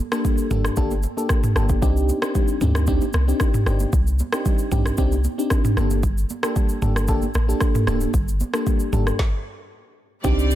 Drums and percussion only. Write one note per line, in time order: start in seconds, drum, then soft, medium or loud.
0.12 cross-stick loud
0.12 shaker medium
0.25 kick medium
0.25 low conga medium
0.25 shaker medium
0.38 shaker medium
0.51 mid tom loud
0.51 low conga medium
0.51 shaker medium
0.65 cross-stick medium
0.65 shaker medium
0.76 kick loud
0.76 shaker medium
0.91 high conga medium
0.91 shaker soft
1.03 high conga medium
1.03 shaker soft
1.18 shaker soft
1.29 kick medium
1.29 cross-stick medium
1.29 shaker medium
1.43 mid tom medium
1.43 shaker medium
1.56 cross-stick medium
1.56 high conga medium
1.56 shaker soft
1.69 kick loud
1.69 high conga medium
1.69 shaker medium
1.82 kick loud
1.82 low conga medium
1.82 shaker medium
1.97 shaker medium
2.09 high conga medium
2.09 shaker soft
2.22 cross-stick loud
2.22 shaker medium
2.35 kick medium
2.35 low conga medium
2.35 shaker medium
2.48 shaker medium
2.61 mid tom loud
2.61 low conga medium
2.61 shaker medium
2.75 cross-stick loud
2.75 shaker medium
2.87 kick loud
2.87 shaker medium
3.01 high conga medium
3.01 shaker soft
3.13 cross-stick loud
3.13 high conga medium
3.13 shaker medium
3.29 shaker medium
3.40 kick loud
3.40 cross-stick medium
3.40 shaker medium
3.54 mid tom loud
3.54 shaker medium
3.66 cross-stick medium
3.66 high conga medium
3.66 shaker soft
3.80 high conga medium
3.80 shaker medium
3.93 kick loud
3.93 low conga medium
3.93 shaker medium
4.07 shaker medium
4.19 high conga medium
4.19 shaker soft
4.33 cross-stick loud
4.33 shaker medium
4.46 kick medium
4.46 low conga medium
4.46 shaker medium
4.58 shaker medium
4.72 mid tom loud
4.72 low conga medium
4.72 shaker medium
4.86 cross-stick medium
4.86 shaker medium
4.97 kick loud
4.97 shaker medium
5.12 high conga medium
5.12 shaker soft
5.24 high conga medium
5.24 shaker soft
5.39 shaker medium
5.50 kick medium
5.50 cross-stick medium
5.50 shaker medium
5.65 mid tom loud
5.65 shaker medium
5.77 cross-stick medium
5.77 high conga medium
5.77 shaker medium
5.90 high conga medium
5.90 shaker medium
6.03 kick loud
6.03 low conga medium
6.03 shaker medium
6.18 shaker medium
6.30 high conga medium
6.30 shaker soft
6.43 cross-stick loud
6.43 shaker medium
6.56 kick medium
6.56 low conga medium
6.56 shaker medium
6.69 shaker medium
6.82 mid tom loud
6.82 low conga medium
6.82 shaker medium
6.96 cross-stick medium
6.96 shaker medium
7.08 kick loud
7.08 shaker medium
7.22 high conga medium
7.22 shaker soft
7.34 cross-stick medium
7.34 high conga medium
7.34 shaker soft
7.50 shaker soft
7.61 kick loud
7.61 cross-stick medium
7.61 shaker medium
7.75 mid tom loud
7.75 shaker medium
7.87 cross-stick medium
7.87 high conga medium
7.87 shaker soft
8.01 high conga medium
8.01 shaker medium
8.13 kick loud
8.13 low conga medium
8.13 shaker medium
8.28 shaker medium
8.40 high conga medium
8.40 shaker medium
8.54 cross-stick loud
8.54 shaker medium
8.66 kick medium
8.66 low conga medium
8.66 shaker medium
8.80 shaker medium
8.93 mid tom loud
8.93 high conga medium
8.93 low conga medium
8.93 shaker medium
9.07 cross-stick medium
9.07 shaker medium
9.19 kick loud
9.19 snare medium
10.25 kick loud
10.25 shaker medium
10.39 shaker medium
10.51 shaker medium